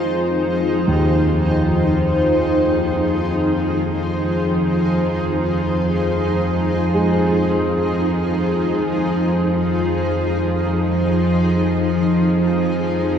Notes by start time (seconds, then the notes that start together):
Already playing: F2 F3 D#4 F4 G#4 C5
0.88 D#2
6.94 G#3